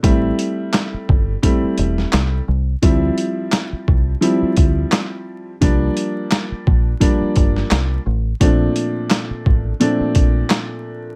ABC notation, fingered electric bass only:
X:1
M:4/4
L:1/8
Q:"Swing 16ths" 1/4=86
K:Dm
V:1 name="Fingered electric bass" clef=bass
A,,, z2 G,,, z E,,, C,, C,, | D,, z2 C,, z D,, z2 | C,, z2 B,,, z G,,, C,, A,,, | B,,, z2 A,,, z B,,, z2 |]